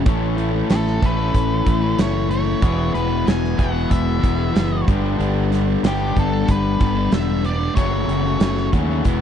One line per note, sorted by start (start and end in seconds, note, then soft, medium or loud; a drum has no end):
0.04 0.61 A1 medium
0.04 0.67 A2 medium
0.04 0.36 E3 medium
0.04 0.36 A3 medium
0.04 0.37 C#4 medium
0.04 0.39 E4 medium
0.04 kick loud
0.04 closed hi-hat medium
0.09 1.00 A4 medium
0.37 0.69 E3 medium
0.37 0.54 A3 medium
0.37 0.52 C#4 medium
0.37 0.51 E4 medium
0.37 closed hi-hat soft
0.52 0.69 A3 soft
0.52 0.69 C#4 medium
0.52 0.71 E4 medium
0.68 0.98 A1 medium
0.68 1.34 A2 medium
0.68 0.99 E3 medium
0.68 1.00 A3 medium
0.68 1.01 C#4 medium
0.68 1.02 E4 loud
0.68 1.04 A4 medium
0.68 snare loud
0.68 closed hi-hat medium
0.87 snare soft
1.00 1.30 A1 medium
1.00 1.50 E3 medium
1.00 1.19 A3 medium
1.00 1.18 C#4 medium
1.00 1.16 E4 medium
1.00 2.60 A4 medium
1.00 kick medium
1.00 closed hi-hat medium
1.05 2.62 A2 medium
1.05 2.01 B4 medium
1.17 1.65 A3 medium
1.17 1.66 C#4 medium
1.17 1.67 E4 medium
1.34 1.62 A1 medium
1.34 kick medium
1.34 closed hi-hat medium
1.65 1.94 A1 medium
1.65 1.95 E3 medium
1.65 1.83 A3 medium
1.65 1.82 C#4 medium
1.65 1.80 E4 medium
1.65 kick medium
1.65 closed hi-hat medium
1.81 1.97 A3 soft
1.81 1.97 C#4 medium
1.81 1.98 E4 medium
1.96 2.54 F#1 medium
1.96 2.60 A2 medium
1.96 2.28 E3 medium
1.96 2.29 A3 medium
1.96 2.30 C#4 medium
1.96 2.30 E4 medium
1.96 snare loud
1.96 closed hi-hat medium
2.01 2.29 C#5 medium
2.29 2.59 E3 medium
2.29 2.46 A3 medium
2.29 2.44 C#4 medium
2.29 2.43 E4 medium
2.29 2.94 C#5 medium
2.29 closed hi-hat medium
2.44 2.61 A3 medium
2.44 2.60 C#4 medium
2.44 2.60 E4 medium
2.60 2.90 E1 medium
2.60 3.57 E2 medium
2.60 3.57 B2 medium
2.60 2.91 E3 medium
2.60 2.93 G#3 medium
2.60 2.95 B3 medium
2.60 2.95 E4 loud
2.60 kick medium
2.60 closed hi-hat medium
2.65 3.58 G#4 medium
2.92 3.23 E1 medium
2.92 3.23 E3 medium
2.92 3.09 G#3 medium
2.92 3.09 B3 medium
2.92 3.06 E4 medium
2.92 3.25 B4 medium
2.92 closed hi-hat soft
3.07 3.24 G#3 medium
3.07 3.26 B3 medium
3.07 3.25 E4 medium
3.24 3.55 E1 medium
3.24 3.54 E3 medium
3.24 3.55 G#3 medium
3.24 3.57 B3 medium
3.24 3.58 E4 medium
3.24 closed hi-hat medium
3.28 3.61 G#5 medium
3.28 snare loud
3.45 snare soft
3.55 3.87 E1 medium
3.55 4.05 E3 medium
3.55 3.74 G#3 medium
3.55 3.73 B3 medium
3.55 3.71 E4 medium
3.55 3.91 F#5 medium
3.55 kick medium
3.55 closed hi-hat soft
3.59 4.87 E2 medium
3.59 4.87 B2 medium
3.59 4.87 E3 medium
3.59 4.86 G#4 medium
3.72 4.19 G#3 soft
3.72 4.20 B3 medium
3.72 4.21 E4 medium
3.91 4.18 E1 medium
3.91 4.84 E5 medium
3.91 kick medium
3.91 closed hi-hat medium
4.19 4.49 E3 medium
4.19 4.37 G#3 medium
4.19 4.36 B3 medium
4.19 4.34 E4 medium
4.23 4.51 E1 medium
4.23 kick medium
4.23 closed hi-hat medium
4.35 4.51 G#3 medium
4.35 4.52 B3 medium
4.35 4.53 E4 medium
4.50 4.83 E3 medium
4.50 4.84 G#3 medium
4.50 4.85 B3 medium
4.50 4.85 E4 medium
4.56 4.83 F#1 medium
4.56 snare loud
4.56 closed hi-hat medium
4.85 5.15 G1 medium
4.85 5.16 G2 medium
4.85 5.17 D3 medium
4.85 5.03 G3 medium
4.85 5.02 B3 medium
4.85 5.01 D4 medium
4.85 kick loud
4.85 closed hi-hat medium
4.91 5.84 G4 medium
5.02 5.18 G3 medium
5.02 5.18 B3 medium
5.02 5.19 D4 medium
5.17 5.75 G1 medium
5.17 5.82 G2 medium
5.17 5.49 D3 medium
5.17 5.50 G3 loud
5.17 5.51 B3 medium
5.17 5.52 D4 medium
5.17 closed hi-hat medium
5.50 5.83 D3 medium
5.50 5.68 G3 medium
5.50 5.66 B3 medium
5.50 5.65 D4 medium
5.50 snare soft
5.50 closed hi-hat medium
5.66 5.84 G3 medium
5.66 5.84 B3 medium
5.66 5.85 D4 medium
5.83 6.11 G1 medium
5.83 6.48 G2 medium
5.83 6.14 D3 medium
5.83 6.15 G3 medium
5.83 6.16 B3 medium
5.83 6.17 D4 medium
5.83 6.19 G4 medium
5.83 snare loud
5.83 closed hi-hat medium
5.88 7.45 G4 medium
6.15 6.44 G1 medium
6.15 6.64 D3 medium
6.15 6.33 G3 medium
6.15 6.32 B3 medium
6.15 6.30 D4 medium
6.15 kick medium
6.15 closed hi-hat soft
6.19 6.48 A4 medium
6.32 6.79 G3 medium
6.32 6.79 B3 medium
6.32 6.81 D4 medium
6.48 6.76 G1 medium
6.48 7.14 B4 medium
6.48 kick medium
6.48 closed hi-hat medium
6.79 7.08 G1 medium
6.79 7.10 D3 medium
6.79 6.97 G3 medium
6.79 6.95 B3 medium
6.79 6.94 D4 medium
6.79 kick medium
6.79 closed hi-hat medium
6.95 7.11 G3 medium
6.95 7.12 B3 medium
6.95 7.13 D4 medium
7.10 7.67 E1 medium
7.10 7.74 G2 medium
7.10 7.42 D3 medium
7.10 7.43 G3 medium
7.10 7.44 B3 medium
7.10 7.45 D4 medium
7.10 7.43 E5 medium
7.10 snare loud
7.10 closed hi-hat medium
7.43 7.74 D3 medium
7.43 7.61 G3 medium
7.43 7.59 B3 medium
7.43 7.57 D4 medium
7.43 7.75 D5 medium
7.43 closed hi-hat medium
7.59 7.75 G3 medium
7.59 7.75 B3 medium
7.59 7.74 D4 medium
7.74 8.04 F#1 medium
7.74 8.39 F#2 medium
7.74 8.06 C#3 medium
7.74 8.08 F#3 medium
7.74 8.09 A3 medium
7.74 8.10 C#4 loud
7.74 8.69 C#5 medium
7.74 kick medium
7.74 closed hi-hat medium
7.81 8.72 F#4 medium
8.08 8.36 F#1 medium
8.08 8.40 C#3 medium
8.08 8.26 F#3 medium
8.08 8.24 A3 medium
8.08 8.23 C#4 medium
8.08 closed hi-hat medium
8.25 8.41 F#3 medium
8.25 8.41 A3 medium
8.25 8.42 C#4 medium
8.40 8.68 F#1 medium
8.40 9.03 F#2 medium
8.40 8.71 C#3 medium
8.40 8.73 F#3 medium
8.40 8.73 A3 medium
8.40 8.74 C#4 medium
8.40 snare loud
8.40 closed hi-hat medium
8.57 snare soft
8.72 9.01 D#2 medium
8.72 9.03 C#3 medium
8.72 8.90 F#3 medium
8.72 8.89 A3 medium
8.72 8.88 C#4 medium
8.72 9.03 F#4 medium
8.72 kick medium
8.72 closed hi-hat medium
8.77 9.04 F#2 medium
8.77 9.05 C#3 medium
8.89 9.05 F#3 medium
8.89 9.04 A3 medium
8.89 9.03 C#4 medium
9.05 9.21 E1 medium
9.05 9.21 E2 medium
9.05 9.21 B2 medium
9.05 9.21 E3 medium
9.05 9.21 G#3 medium
9.05 9.21 B3 medium
9.05 9.21 E4 medium
9.05 kick medium
9.05 closed hi-hat medium